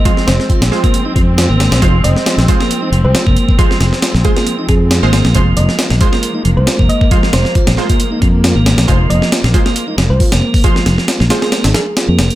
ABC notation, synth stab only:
X:1
M:4/4
L:1/16
Q:"Swing 16ths" 1/4=136
K:Fm
V:1 name="Synth stab"
[A,Fc] z4 z [A,Fc]8- [A,Fc]2 | [A,Fc] z4 z [A,Fc]8- [A,Fc]2 | [A,Fc] z4 z [A,Fc]6- [A,Fc] [A,Fc] z2 | [A,Fc] z4 z [A,Fc]8- [A,Fc]2 |
[A,Fc] z4 z [A,Fc]8- [A,Fc]2 | [A,Fc] z4 z [A,Fc]8- [A,Fc]2 | [A,Fc] z4 z [A,Fc]8- [A,Fc]2 |]